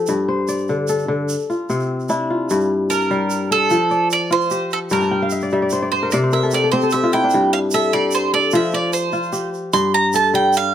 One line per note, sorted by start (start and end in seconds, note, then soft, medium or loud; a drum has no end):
0.00 0.13 F3 medium
0.00 0.80 F4 medium
0.00 1.10 G4 medium
0.00 0.89 A4 medium
0.07 1.34 G2 medium
0.07 shaker medium
0.28 1.47 C5 medium
0.48 1.59 D5 medium
0.48 shaker medium
0.58 shaker soft
0.68 1.07 D3 medium
0.68 shaker soft
0.88 2.21 A4 medium
0.88 shaker medium
0.98 shaker soft
1.08 1.34 D3 medium
1.29 shaker medium
1.39 shaker soft
1.50 2.16 F4 medium
1.50 shaker soft
1.70 2.54 C3 medium
1.70 3.50 C4 medium
1.70 shaker soft
1.80 shaker soft
2.00 shaker soft
2.09 3.77 D4 medium
2.09 3.66 E4 medium
2.09 shaker soft
2.30 3.82 F4 medium
2.50 3.75 G2 medium
2.50 shaker medium
2.60 shaker soft
2.90 3.52 A#4 medium
2.90 3.77 A5 medium
2.90 shaker medium
3.10 3.75 G3 medium
3.10 shaker soft
3.30 shaker medium
3.51 4.83 A4 medium
3.51 4.07 A4 loud
3.70 4.95 F3 medium
3.70 shaker medium
3.90 5.02 D5 medium
3.90 shaker soft
4.11 4.32 D5 medium
4.11 shaker medium
4.30 5.38 F4 medium
4.30 4.73 C5 medium
4.30 shaker soft
4.41 shaker soft
4.50 5.92 G4 medium
4.50 shaker medium
4.71 4.78 A4 medium
4.71 shaker soft
4.90 6.16 G2 medium
4.90 5.29 A#4 medium
4.90 5.11 G5 medium
4.90 shaker medium
5.01 5.89 A5 medium
5.01 shaker soft
5.11 6.04 G5 medium
5.22 5.59 F5 medium
5.30 5.52 E5 medium
5.30 shaker medium
5.40 5.62 D5 medium
5.40 shaker soft
5.50 6.16 G3 medium
5.50 6.56 E5 medium
5.50 shaker soft
5.62 5.82 D5 medium
5.70 5.92 C5 medium
5.70 shaker medium
5.82 6.13 D5 medium
5.92 6.10 C5 medium
5.92 6.23 C5 medium
6.03 6.32 A#4 medium
6.11 7.36 C3 medium
6.11 6.17 D5 medium
6.11 7.24 D5 medium
6.11 shaker medium
6.24 7.42 C5 medium
6.31 6.70 A#4 medium
6.31 6.51 E5 medium
6.31 shaker soft
6.43 6.63 A4 medium
6.51 6.73 G4 medium
6.51 6.71 D5 medium
6.51 shaker medium
6.64 6.83 A4 medium
6.71 8.53 C4 medium
6.71 6.93 G4 medium
6.71 6.92 C5 medium
6.71 shaker soft
6.81 7.74 A4 medium
6.81 shaker soft
6.90 8.35 G4 medium
6.90 7.12 E5 medium
6.90 shaker medium
7.04 8.53 F4 medium
7.12 8.59 E4 medium
7.12 7.50 G5 medium
7.12 shaker soft
7.24 8.92 D4 medium
7.30 shaker medium
7.34 8.57 G2 medium
7.53 7.58 F5 medium
7.71 8.33 A4 medium
7.71 7.92 E5 medium
7.71 shaker medium
7.91 8.57 G3 medium
7.91 8.13 D5 medium
7.91 shaker soft
8.11 8.33 C5 medium
8.11 shaker medium
8.33 9.65 A4 medium
8.33 8.52 D5 medium
8.51 9.78 F3 medium
8.51 9.12 F4 medium
8.51 shaker medium
8.55 8.72 E5 medium
8.71 9.84 D5 medium
8.71 8.93 D5 medium
8.71 shaker soft
8.93 9.49 C5 medium
8.93 shaker medium
9.12 10.64 F4 medium
9.12 shaker soft
9.23 shaker soft
9.33 10.74 G4 medium
9.33 shaker medium
9.54 shaker soft
9.73 10.74 G2 medium
9.73 9.94 C6 medium
9.73 shaker medium
9.94 10.14 A#5 medium
10.13 10.74 A4 medium
10.13 10.33 A5 medium
10.13 shaker medium
10.34 10.74 G3 medium
10.34 10.55 G5 loud
10.34 shaker soft
10.53 10.74 F5 loud
10.53 shaker medium